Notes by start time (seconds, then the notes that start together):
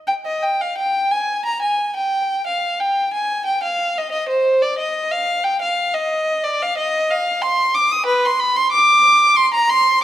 0.07 G5
0.26 D#5
0.43 G5
0.61 F5
0.77 G5
1.11 G#5
1.45 A#5
1.62 G#5
1.96 G5
2.46 F5
2.80 G5
3.13 G#5
3.46 G5
3.63 F5
3.98 D#5
4.12 D#5
4.29 C5
4.62 D5
4.78 D#5
5.11 F5
5.44 G5
5.62 F5
5.94 D#5
6.44 D5
6.62 F5
6.78 D#5
7.11 F5
7.42 C6
7.74 D6
7.92 D#6
8.06 B4
8.25 C6
8.40 B5
8.57 C6
8.72 D6
9.36 C6
9.54 A#5
9.70 C6